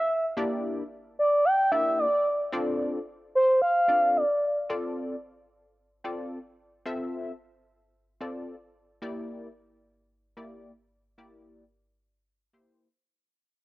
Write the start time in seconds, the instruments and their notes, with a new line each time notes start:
Already playing: analog synth lead E5
0.37 analog polysynth A#3 D4 E4 G4 D5
1.19 analog synth lead D5
1.45 analog synth lead G5
1.72 analog polysynth A#3 D4 E4 G4 D5, analog synth lead E5
1.99 analog synth lead D5
2.53 analog polysynth C4 D4 F4 A4 D5
3.35 analog synth lead C5
3.62 analog synth lead F5
3.88 analog polysynth C4 D4 F4 A4 D5
4.17 analog synth lead D5
4.70 analog polysynth C4 F4 A4 D5
6.04 analog polysynth C4 F4 A4 D5
6.86 analog polysynth C4 F4 A4 E5
8.20 analog polysynth C4 F4 A4 D5
9.02 analog polysynth A#3 E4 G4 D5
10.37 analog polysynth A#3 E4 G4 D5
11.18 analog polysynth A#3 E4 G4 D5
12.53 analog polysynth A#3 E4 G4 C5